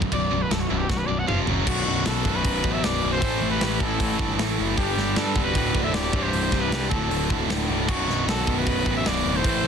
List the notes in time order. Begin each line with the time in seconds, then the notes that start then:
Already playing: B1 F#2 B2 D3 F#3 B3 F#4
0.02 kick
0.11 B0 B1 F#2 B2 F#3 D4 D5, kick, crash
0.31 B0 B1 F#2
0.42 B4
0.50 B0 B1 F#2 A4, snare, crash
0.60 F#4
0.69 B0 B1 F#2 B2 F#3 D4 E4
0.77 G4
0.89 B0 B1 F#2 F#4, kick, snare
0.98 B4
1.06 B0 B1 F#2 D5
1.19 F#5
1.27 F1 F2 C3 F3 F4 F5, mid tom
1.47 F#1 F#2 C#3 F#3 F#4, floor tom
1.67 B0 B1 F#2 B2 B3 D4 F#4, kick, crash
1.71 D3
1.87 B0 B1 F#2 B2
2.06 B1 F#2 B2 F#4 A4, snare, open hi-hat
2.25 B0 B1 F#2 B2, kick
2.35 F#4 B4
2.44 B0 B1 F#2 B2, kick, open hi-hat
2.64 A1 B1 F#2 B2, kick
2.73 C5 E5
2.82 B0 B1 F#2 B2 B4 D5, snare, open hi-hat
3.02 B0 B1 F#2 B2
3.12 A4 C5
3.20 A1 A2 E3 A3 C4 A4, kick, open hi-hat
3.42 A1 A2 E3 A3
3.50 G4 B4
3.61 A1 A2 E3 A3, snare, open hi-hat
3.79 A1 A2 E3 A3 E4 A4, kick
3.99 A1 A2 E3 A3, kick, open hi-hat
4.18 G1 A2 E3 A3, kick
4.38 A1 A2 E3 A3, snare, open hi-hat
4.58 F#1 A2 E3 A3
4.77 G1 G2 D3 G3 B3 D4 G4, kick, open hi-hat
4.97 G1 G2 D3 G3, snare
5.16 G2 D3 G3 D4 A4, snare, open hi-hat
5.35 C1 G2 D3 G3, kick
5.44 B4
5.48 F#4
5.55 D1 D2 A2 D3 A3 F#4, kick, open hi-hat
5.74 C1 D2 A2 D3, kick
5.84 C5 E5
5.93 D1 D2 A2 D3 G4 D5, snare, open hi-hat
6.13 C1 C2 G2 C3 E3 C4 G4, kick
6.22 G4 C5
6.33 C1 C2 G2 C3, open hi-hat
6.52 C1 C2 G2 C3, kick, snare
6.60 G4 B4
6.71 C2 G2 C3, snare, open hi-hat
6.89 D1 D2 A2 D3 A3 F#4 A4, kick
7.10 D1 D2 A2 D3, open hi-hat
7.29 C1 D2 A2 D3, kick
7.47 D1 D2 A2 D3, snare, open hi-hat
7.68 C1 D2 A2 D3
7.88 B0 B1 F#2 B2 B3 D4 F#4, kick, crash
8.07 B0 B1 F#2 B2, snare
8.27 B1 F#2 B2 F#4 A4, snare, open hi-hat
8.47 B0 B1 F#2 B2, kick
8.58 F#4 B4
8.66 B0 B1 F#2 B2, kick, open hi-hat
8.86 A1 B1 F#2 B2, kick
8.96 C5 E5
9.06 B0 B1 F#2 B2 B4 D5, snare, open hi-hat
9.25 D1 B1 F#2 B2
9.36 A4 C5
9.44 A1 A2 E3 A3 C4 A4, kick, open hi-hat
9.63 A2 E3 A3